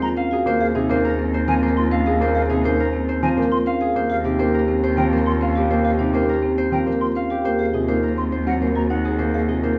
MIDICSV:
0, 0, Header, 1, 6, 480
1, 0, Start_track
1, 0, Tempo, 582524
1, 380, Time_signature, 3, 2, 24, 8
1, 8064, End_track
2, 0, Start_track
2, 0, Title_t, "Flute"
2, 0, Program_c, 0, 73
2, 21, Note_on_c, 0, 82, 65
2, 70, Note_off_c, 0, 82, 0
2, 501, Note_on_c, 0, 77, 80
2, 551, Note_off_c, 0, 77, 0
2, 1220, Note_on_c, 0, 80, 90
2, 1270, Note_off_c, 0, 80, 0
2, 1460, Note_on_c, 0, 84, 62
2, 1510, Note_off_c, 0, 84, 0
2, 1940, Note_on_c, 0, 77, 84
2, 1989, Note_off_c, 0, 77, 0
2, 2659, Note_on_c, 0, 80, 85
2, 2708, Note_off_c, 0, 80, 0
2, 2901, Note_on_c, 0, 84, 67
2, 2950, Note_off_c, 0, 84, 0
2, 3380, Note_on_c, 0, 77, 82
2, 3430, Note_off_c, 0, 77, 0
2, 4099, Note_on_c, 0, 79, 84
2, 4148, Note_off_c, 0, 79, 0
2, 4340, Note_on_c, 0, 84, 62
2, 4389, Note_off_c, 0, 84, 0
2, 4819, Note_on_c, 0, 77, 80
2, 4869, Note_off_c, 0, 77, 0
2, 5539, Note_on_c, 0, 79, 79
2, 5589, Note_off_c, 0, 79, 0
2, 5779, Note_on_c, 0, 84, 58
2, 5828, Note_off_c, 0, 84, 0
2, 6259, Note_on_c, 0, 77, 74
2, 6309, Note_off_c, 0, 77, 0
2, 6738, Note_on_c, 0, 84, 53
2, 6787, Note_off_c, 0, 84, 0
2, 6978, Note_on_c, 0, 78, 68
2, 7028, Note_off_c, 0, 78, 0
2, 7219, Note_on_c, 0, 82, 56
2, 7269, Note_off_c, 0, 82, 0
2, 7699, Note_on_c, 0, 77, 65
2, 7749, Note_off_c, 0, 77, 0
2, 8064, End_track
3, 0, Start_track
3, 0, Title_t, "Harp"
3, 0, Program_c, 1, 46
3, 0, Note_on_c, 1, 68, 62
3, 0, Note_on_c, 1, 70, 64
3, 0, Note_on_c, 1, 72, 66
3, 0, Note_on_c, 1, 77, 65
3, 0, Note_on_c, 1, 78, 64
3, 131, Note_off_c, 1, 77, 0
3, 140, Note_on_c, 1, 77, 63
3, 258, Note_off_c, 1, 68, 0
3, 268, Note_on_c, 1, 68, 65
3, 375, Note_off_c, 1, 72, 0
3, 385, Note_on_c, 1, 72, 87
3, 400, Note_off_c, 1, 78, 0
3, 611, Note_off_c, 1, 68, 0
3, 620, Note_on_c, 1, 68, 67
3, 736, Note_off_c, 1, 72, 0
3, 745, Note_on_c, 1, 72, 86
3, 852, Note_off_c, 1, 70, 0
3, 862, Note_on_c, 1, 70, 66
3, 1095, Note_off_c, 1, 72, 0
3, 1105, Note_on_c, 1, 72, 84
3, 1207, Note_off_c, 1, 70, 0
3, 1217, Note_on_c, 1, 70, 67
3, 1331, Note_off_c, 1, 72, 0
3, 1340, Note_on_c, 1, 72, 66
3, 1571, Note_off_c, 1, 77, 0
3, 1581, Note_on_c, 1, 77, 66
3, 1690, Note_off_c, 1, 68, 0
3, 1700, Note_on_c, 1, 68, 62
3, 1816, Note_off_c, 1, 72, 0
3, 1826, Note_on_c, 1, 72, 79
3, 2051, Note_off_c, 1, 68, 0
3, 2061, Note_on_c, 1, 68, 66
3, 2175, Note_off_c, 1, 72, 0
3, 2185, Note_on_c, 1, 72, 90
3, 2296, Note_off_c, 1, 70, 0
3, 2306, Note_on_c, 1, 70, 66
3, 2534, Note_off_c, 1, 72, 0
3, 2544, Note_on_c, 1, 72, 80
3, 2652, Note_off_c, 1, 70, 0
3, 2662, Note_on_c, 1, 70, 61
3, 2768, Note_off_c, 1, 72, 0
3, 2778, Note_on_c, 1, 72, 61
3, 3012, Note_off_c, 1, 77, 0
3, 3022, Note_on_c, 1, 77, 60
3, 3131, Note_off_c, 1, 68, 0
3, 3141, Note_on_c, 1, 68, 60
3, 3253, Note_off_c, 1, 72, 0
3, 3263, Note_on_c, 1, 72, 81
3, 3279, Note_off_c, 1, 68, 0
3, 3501, Note_on_c, 1, 67, 62
3, 3610, Note_off_c, 1, 72, 0
3, 3620, Note_on_c, 1, 72, 83
3, 3732, Note_off_c, 1, 70, 0
3, 3742, Note_on_c, 1, 70, 62
3, 3974, Note_off_c, 1, 72, 0
3, 3984, Note_on_c, 1, 72, 80
3, 4091, Note_off_c, 1, 70, 0
3, 4101, Note_on_c, 1, 70, 67
3, 4215, Note_off_c, 1, 72, 0
3, 4224, Note_on_c, 1, 72, 60
3, 4458, Note_off_c, 1, 77, 0
3, 4468, Note_on_c, 1, 77, 60
3, 4577, Note_off_c, 1, 67, 0
3, 4587, Note_on_c, 1, 67, 59
3, 4691, Note_off_c, 1, 72, 0
3, 4701, Note_on_c, 1, 72, 76
3, 4934, Note_off_c, 1, 67, 0
3, 4944, Note_on_c, 1, 67, 54
3, 5053, Note_off_c, 1, 72, 0
3, 5063, Note_on_c, 1, 72, 77
3, 5173, Note_off_c, 1, 70, 0
3, 5183, Note_on_c, 1, 70, 58
3, 5411, Note_off_c, 1, 72, 0
3, 5420, Note_on_c, 1, 72, 76
3, 5534, Note_off_c, 1, 70, 0
3, 5544, Note_on_c, 1, 70, 57
3, 5649, Note_off_c, 1, 72, 0
3, 5659, Note_on_c, 1, 72, 54
3, 5892, Note_off_c, 1, 77, 0
3, 5902, Note_on_c, 1, 77, 56
3, 6010, Note_off_c, 1, 67, 0
3, 6020, Note_on_c, 1, 67, 50
3, 6129, Note_off_c, 1, 72, 0
3, 6139, Note_on_c, 1, 72, 73
3, 6159, Note_off_c, 1, 67, 0
3, 6160, Note_off_c, 1, 77, 0
3, 6378, Note_on_c, 1, 68, 51
3, 6485, Note_off_c, 1, 72, 0
3, 6495, Note_on_c, 1, 72, 72
3, 6607, Note_off_c, 1, 70, 0
3, 6617, Note_on_c, 1, 70, 55
3, 6847, Note_off_c, 1, 72, 0
3, 6856, Note_on_c, 1, 72, 60
3, 6968, Note_off_c, 1, 70, 0
3, 6978, Note_on_c, 1, 70, 54
3, 7090, Note_off_c, 1, 72, 0
3, 7099, Note_on_c, 1, 72, 54
3, 7335, Note_on_c, 1, 78, 53
3, 7445, Note_off_c, 1, 68, 0
3, 7455, Note_on_c, 1, 68, 49
3, 7561, Note_off_c, 1, 72, 0
3, 7571, Note_on_c, 1, 72, 63
3, 7806, Note_off_c, 1, 68, 0
3, 7815, Note_on_c, 1, 68, 51
3, 7929, Note_off_c, 1, 72, 0
3, 7939, Note_on_c, 1, 72, 71
3, 8048, Note_off_c, 1, 70, 0
3, 8064, Note_off_c, 1, 68, 0
3, 8064, Note_off_c, 1, 72, 0
3, 8064, Note_off_c, 1, 78, 0
3, 8064, End_track
4, 0, Start_track
4, 0, Title_t, "Marimba"
4, 0, Program_c, 2, 12
4, 19, Note_on_c, 2, 65, 68
4, 137, Note_on_c, 2, 61, 76
4, 175, Note_off_c, 2, 65, 0
4, 257, Note_on_c, 2, 66, 67
4, 295, Note_off_c, 2, 61, 0
4, 415, Note_off_c, 2, 66, 0
4, 499, Note_on_c, 2, 68, 74
4, 620, Note_on_c, 2, 63, 73
4, 655, Note_off_c, 2, 68, 0
4, 739, Note_on_c, 2, 61, 61
4, 776, Note_off_c, 2, 63, 0
4, 895, Note_off_c, 2, 61, 0
4, 980, Note_on_c, 2, 60, 63
4, 1136, Note_off_c, 2, 60, 0
4, 1218, Note_on_c, 2, 60, 83
4, 1375, Note_off_c, 2, 60, 0
4, 1458, Note_on_c, 2, 65, 67
4, 1577, Note_on_c, 2, 61, 78
4, 1615, Note_off_c, 2, 65, 0
4, 1698, Note_on_c, 2, 68, 69
4, 1735, Note_off_c, 2, 61, 0
4, 1855, Note_off_c, 2, 68, 0
4, 1937, Note_on_c, 2, 68, 71
4, 2058, Note_on_c, 2, 63, 66
4, 2095, Note_off_c, 2, 68, 0
4, 2177, Note_on_c, 2, 61, 63
4, 2215, Note_off_c, 2, 63, 0
4, 2335, Note_off_c, 2, 61, 0
4, 2416, Note_on_c, 2, 60, 66
4, 2574, Note_off_c, 2, 60, 0
4, 2659, Note_on_c, 2, 60, 78
4, 2816, Note_off_c, 2, 60, 0
4, 2898, Note_on_c, 2, 65, 68
4, 3017, Note_on_c, 2, 61, 76
4, 3055, Note_off_c, 2, 65, 0
4, 3139, Note_on_c, 2, 68, 61
4, 3175, Note_off_c, 2, 61, 0
4, 3295, Note_off_c, 2, 68, 0
4, 3376, Note_on_c, 2, 67, 71
4, 3497, Note_on_c, 2, 63, 63
4, 3534, Note_off_c, 2, 67, 0
4, 3618, Note_on_c, 2, 61, 65
4, 3655, Note_off_c, 2, 63, 0
4, 3775, Note_off_c, 2, 61, 0
4, 3857, Note_on_c, 2, 60, 61
4, 4015, Note_off_c, 2, 60, 0
4, 4096, Note_on_c, 2, 60, 75
4, 4254, Note_off_c, 2, 60, 0
4, 4337, Note_on_c, 2, 65, 57
4, 4457, Note_on_c, 2, 61, 71
4, 4495, Note_off_c, 2, 65, 0
4, 4577, Note_on_c, 2, 67, 60
4, 4615, Note_off_c, 2, 61, 0
4, 4735, Note_off_c, 2, 67, 0
4, 4818, Note_on_c, 2, 67, 69
4, 4937, Note_on_c, 2, 63, 64
4, 4975, Note_off_c, 2, 67, 0
4, 5057, Note_on_c, 2, 61, 62
4, 5095, Note_off_c, 2, 63, 0
4, 5215, Note_off_c, 2, 61, 0
4, 5297, Note_on_c, 2, 60, 62
4, 5455, Note_off_c, 2, 60, 0
4, 5539, Note_on_c, 2, 60, 67
4, 5695, Note_off_c, 2, 60, 0
4, 5778, Note_on_c, 2, 65, 58
4, 5895, Note_on_c, 2, 61, 67
4, 5935, Note_off_c, 2, 65, 0
4, 6018, Note_on_c, 2, 67, 57
4, 6054, Note_off_c, 2, 61, 0
4, 6175, Note_off_c, 2, 67, 0
4, 6255, Note_on_c, 2, 68, 71
4, 6376, Note_on_c, 2, 65, 61
4, 6414, Note_off_c, 2, 68, 0
4, 6496, Note_on_c, 2, 63, 55
4, 6534, Note_off_c, 2, 65, 0
4, 6654, Note_off_c, 2, 63, 0
4, 6736, Note_on_c, 2, 60, 54
4, 6894, Note_off_c, 2, 60, 0
4, 6978, Note_on_c, 2, 60, 68
4, 7135, Note_off_c, 2, 60, 0
4, 7214, Note_on_c, 2, 66, 57
4, 7336, Note_on_c, 2, 63, 65
4, 7374, Note_off_c, 2, 66, 0
4, 7457, Note_on_c, 2, 68, 54
4, 7494, Note_off_c, 2, 63, 0
4, 7615, Note_off_c, 2, 68, 0
4, 7699, Note_on_c, 2, 68, 66
4, 7820, Note_on_c, 2, 65, 54
4, 7855, Note_off_c, 2, 68, 0
4, 7937, Note_on_c, 2, 63, 49
4, 7976, Note_off_c, 2, 65, 0
4, 8064, Note_off_c, 2, 63, 0
4, 8064, End_track
5, 0, Start_track
5, 0, Title_t, "Grand piano"
5, 0, Program_c, 3, 0
5, 378, Note_on_c, 3, 58, 85
5, 535, Note_off_c, 3, 58, 0
5, 617, Note_on_c, 3, 48, 72
5, 738, Note_on_c, 3, 58, 86
5, 775, Note_off_c, 3, 48, 0
5, 895, Note_off_c, 3, 58, 0
5, 1216, Note_on_c, 3, 53, 62
5, 1338, Note_on_c, 3, 58, 65
5, 1374, Note_off_c, 3, 53, 0
5, 1495, Note_off_c, 3, 58, 0
5, 1820, Note_on_c, 3, 58, 78
5, 1976, Note_off_c, 3, 58, 0
5, 2059, Note_on_c, 3, 48, 58
5, 2179, Note_on_c, 3, 58, 75
5, 2215, Note_off_c, 3, 48, 0
5, 2335, Note_off_c, 3, 58, 0
5, 2659, Note_on_c, 3, 53, 70
5, 2779, Note_on_c, 3, 58, 67
5, 2816, Note_off_c, 3, 53, 0
5, 2936, Note_off_c, 3, 58, 0
5, 3259, Note_on_c, 3, 58, 68
5, 3415, Note_off_c, 3, 58, 0
5, 3497, Note_on_c, 3, 48, 63
5, 3617, Note_on_c, 3, 58, 71
5, 3655, Note_off_c, 3, 48, 0
5, 3775, Note_off_c, 3, 58, 0
5, 4099, Note_on_c, 3, 53, 64
5, 4218, Note_on_c, 3, 58, 64
5, 4255, Note_off_c, 3, 53, 0
5, 4375, Note_off_c, 3, 58, 0
5, 4698, Note_on_c, 3, 58, 73
5, 4855, Note_off_c, 3, 58, 0
5, 4937, Note_on_c, 3, 48, 57
5, 5055, Note_on_c, 3, 58, 76
5, 5095, Note_off_c, 3, 48, 0
5, 5214, Note_off_c, 3, 58, 0
5, 5534, Note_on_c, 3, 53, 58
5, 5656, Note_on_c, 3, 58, 62
5, 5694, Note_off_c, 3, 53, 0
5, 5814, Note_off_c, 3, 58, 0
5, 6137, Note_on_c, 3, 58, 66
5, 6295, Note_off_c, 3, 58, 0
5, 6379, Note_on_c, 3, 48, 56
5, 6498, Note_on_c, 3, 58, 70
5, 6536, Note_off_c, 3, 48, 0
5, 6655, Note_off_c, 3, 58, 0
5, 6977, Note_on_c, 3, 54, 51
5, 7097, Note_on_c, 3, 58, 51
5, 7135, Note_off_c, 3, 54, 0
5, 7255, Note_off_c, 3, 58, 0
5, 7574, Note_on_c, 3, 58, 62
5, 7734, Note_off_c, 3, 58, 0
5, 7815, Note_on_c, 3, 48, 51
5, 7935, Note_on_c, 3, 58, 62
5, 7974, Note_off_c, 3, 48, 0
5, 8064, Note_off_c, 3, 58, 0
5, 8064, End_track
6, 0, Start_track
6, 0, Title_t, "Cello"
6, 0, Program_c, 4, 42
6, 0, Note_on_c, 4, 39, 76
6, 252, Note_off_c, 4, 39, 0
6, 379, Note_on_c, 4, 39, 71
6, 3130, Note_off_c, 4, 39, 0
6, 3260, Note_on_c, 4, 39, 72
6, 6011, Note_off_c, 4, 39, 0
6, 6139, Note_on_c, 4, 39, 65
6, 8064, Note_off_c, 4, 39, 0
6, 8064, End_track
0, 0, End_of_file